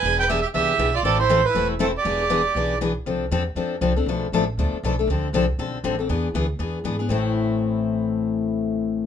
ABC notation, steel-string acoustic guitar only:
X:1
M:4/4
L:1/8
Q:"Swing" 1/4=238
K:Am
V:1 name="Steel-string acoustic guitar"
[E,B,D^G] z [E,B,DG] z [E,B,DG] z [E,B,DG] z | [E,A,CEA] z [E,A,CEA] z [E,A,CEA] z [E,A,CEA] z | [E,B,D^G] z [E,B,DG] z [E,B,DG] z [E,B,DG] z | [F,CDA] z [F,CDA] z [F,CDA] z [F,CDA] [CDA] |
[B,,F,A,DA] z [B,,F,A,DA] z [B,,F,A,DA] z [B,,F,A,DA] [A,DA] | [D,F,CDA] z [D,F,CDA] z [D,F,CDA] z [D,F,CDA] [CDA] | [E,B,D^G] z [E,B,DG] z [E,B,DG] z [E,B,DG] [B,DG] | [A,,E,A,CEA]8- |
[A,,E,A,CEA]8 |]